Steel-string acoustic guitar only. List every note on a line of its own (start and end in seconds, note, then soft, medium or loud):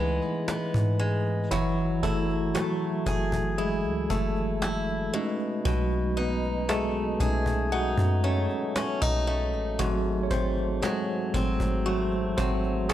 0.00 1.52 C#3 medium
0.00 0.99 G#3 medium
0.00 0.47 B3 medium
0.00 2.03 E4 medium
0.48 1.62 B3 medium
0.99 1.51 G#3 medium
1.51 5.24 F#3 medium
2.03 3.57 E4 medium
2.55 4.10 A3 medium
3.06 6.56 G#4 medium
3.58 4.61 E4 medium
4.10 5.68 A3 medium
4.62 5.24 E4 medium
5.14 5.64 B2 medium
5.65 9.79 B2 medium
6.17 7.72 D#4 medium
6.69 8.23 A3 medium
7.20 10.34 G#4 medium
7.72 8.75 D#4 medium
8.24 9.27 A3 medium
8.76 9.02 C#4 medium
9.02 9.90 D#4 soft
9.27 10.30 A3 medium
9.79 12.93 G#2 medium
10.31 11.85 A3 medium
10.82 12.36 F#3 medium
11.34 12.93 C4 medium
11.86 12.88 A3 medium
12.38 12.93 F#3 medium
12.89 12.93 A3 medium